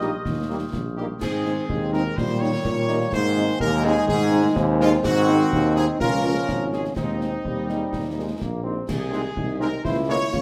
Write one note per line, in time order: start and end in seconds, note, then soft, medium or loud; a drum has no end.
0.00 0.16 A#1 medium
0.00 0.09 G3 medium
0.00 0.10 G3 medium
0.00 0.09 A#3 medium
0.00 0.10 A#3 medium
0.00 0.10 D#4 medium
0.00 0.93 G4 loud
0.00 0.69 D#5 loud
0.00 0.68 D#6 medium
0.00 snare medium
0.25 0.65 D#2 medium
0.25 concert bass drum medium
0.25 snare medium
0.49 0.57 G3 medium
0.49 0.57 A#3 medium
0.49 0.58 A#3 medium
0.49 0.58 D#4 medium
0.72 1.12 A#1 medium
0.72 concert bass drum medium
0.72 snare medium
0.96 1.05 G3 medium
0.96 1.06 G3 medium
0.96 1.05 A#3 medium
0.96 1.06 A#3 medium
0.96 1.06 D#4 medium
0.96 1.07 G4 medium
1.20 1.60 G#2 loud
1.20 3.09 D#3 medium
1.20 2.13 C4 medium
1.20 1.66 C4 loud
1.20 1.89 G#4 loud
1.20 concert bass drum medium
1.20 snare medium
1.20 crash medium
1.46 1.54 G#3 medium
1.46 1.54 C4 medium
1.46 1.54 D#4 medium
1.46 snare medium
1.68 2.08 D#2 medium
1.68 2.13 G#3 medium
1.68 concert bass drum medium
1.92 2.01 G#3 medium
1.92 2.01 C4 medium
1.92 2.02 D#4 medium
1.92 2.15 A#4 loud
1.92 snare medium
2.16 2.56 A#2 loud
2.16 3.09 G3 medium
2.16 2.62 G3 loud
2.16 2.41 C5 loud
2.16 concert bass drum medium
2.16 snare medium
2.40 2.49 G3 medium
2.40 2.49 A#3 medium
2.40 2.49 D#4 medium
2.40 3.12 C#5 loud
2.64 3.04 A#2 loud
2.64 3.57 A#3 loud
2.64 concert bass drum medium
2.64 snare medium
2.89 2.98 G3 medium
2.89 2.98 A#3 medium
2.89 2.98 D#4 loud
2.89 snare medium
3.01 snare medium
3.12 3.52 G#2 loud
3.12 5.00 D#3 loud
3.12 5.04 G#3 loud
3.12 3.57 C5 loud
3.12 concert bass drum medium
3.12 snare medium
3.12 crash soft
3.36 3.45 G#3 medium
3.36 3.45 C4 medium
3.36 3.45 D#4 medium
3.36 snare medium
3.60 4.00 D#2 loud
3.60 4.58 D#4 loud
3.60 3.83 A#4 loud
3.60 concert bass drum medium
3.84 3.93 G#3 loud
3.84 3.93 C4 loud
3.84 3.92 D#4 loud
3.84 4.08 G#4 loud
3.84 snare medium
4.07 4.48 G#2 loud
4.07 4.53 G#4 loud
4.07 concert bass drum loud
4.07 snare medium
4.32 4.41 G#3 loud
4.32 4.41 C4 medium
4.32 4.41 D#4 medium
4.55 4.96 D#2 loud
4.55 5.52 C4 loud
4.55 concert bass drum medium
4.55 snare medium
4.80 4.89 G#3 loud
4.80 4.89 C4 loud
4.80 4.89 D#4 loud
4.80 4.92 F4 loud
4.80 snare medium
4.93 snare medium
5.03 5.44 G#2 loud
5.03 5.97 D#3 loud
5.03 5.96 C4 loud
5.03 5.73 F#4 loud
5.03 concert bass drum medium
5.03 snare medium
5.03 crash soft
5.28 5.37 G#3 medium
5.28 5.37 C4 loud
5.28 5.37 D#4 medium
5.28 snare medium
5.51 5.88 D#2 loud
5.51 5.97 D#4 loud
5.51 concert bass drum medium
5.76 5.85 G#3 loud
5.76 5.85 C4 medium
5.76 5.85 D#4 loud
5.76 5.87 G#4 loud
5.76 snare medium
6.00 6.40 C#2 loud
6.00 6.97 F3 loud
6.00 6.97 C#4 loud
6.00 6.51 F4 loud
6.00 6.69 A#4 loud
6.00 concert bass drum medium
6.00 snare medium
6.24 6.33 G#3 medium
6.24 6.33 C#4 medium
6.24 6.33 F4 medium
6.48 6.88 G#1 medium
6.48 6.96 C#4 loud
6.48 concert bass drum medium
6.48 snare medium
6.73 6.82 G#3 medium
6.73 6.82 C#4 medium
6.73 6.82 F4 medium
6.73 6.84 G#4 loud
6.73 snare medium
6.85 snare medium
6.96 7.36 D#2 medium
6.96 7.36 G#3 medium
6.96 7.36 C4 medium
6.96 8.61 C4 loud
6.96 8.61 D#4 loud
6.96 concert bass drum medium
6.96 snare medium
6.96 crash soft
7.21 7.29 G#3 medium
7.21 7.29 C4 medium
7.21 7.29 D#4 medium
7.21 snare medium
7.44 7.85 D#2 medium
7.44 8.12 G3 loud
7.44 concert bass drum medium
7.69 7.77 G#3 medium
7.69 7.77 C4 medium
7.69 7.78 D#4 medium
7.69 snare medium
7.92 8.32 D#2 medium
7.92 concert bass drum medium
7.92 snare medium
8.16 8.26 G3 medium
8.16 8.40 G#3 medium
8.16 8.26 A#3 medium
8.16 8.26 D#4 medium
8.39 8.80 A#1 medium
8.39 8.64 A#3 medium
8.39 concert bass drum medium
8.39 snare medium
8.64 8.73 G3 medium
8.64 8.73 A#3 medium
8.64 8.86 C4 medium
8.64 8.73 D#4 medium
8.88 9.28 C2 loud
8.88 9.57 G#4 loud
8.88 concert bass drum medium
8.88 snare medium
8.88 crash medium
9.11 9.20 G#3 medium
9.11 9.21 G#3 medium
9.11 9.20 C4 medium
9.11 9.21 C4 medium
9.11 9.21 D#4 medium
9.11 snare medium
9.36 9.76 C2 medium
9.36 9.81 D#4 medium
9.36 concert bass drum medium
9.59 9.68 G#3 loud
9.59 9.69 G#3 medium
9.59 9.68 C4 medium
9.59 9.69 C4 medium
9.59 9.69 D#4 medium
9.59 9.83 A#4 loud
9.59 snare medium
9.84 10.24 C#2 loud
9.84 10.29 E4 loud
9.84 9.95 C5 loud
9.84 concert bass drum medium
9.84 snare medium
10.07 10.16 G#3 medium
10.07 10.17 G#3 medium
10.07 10.16 A#3 loud
10.07 10.17 A#3 medium
10.07 10.17 E4 medium
10.07 10.42 C#5 loud
10.32 10.42 C#2 loud
10.32 10.42 F4 loud
10.32 concert bass drum medium
10.32 snare medium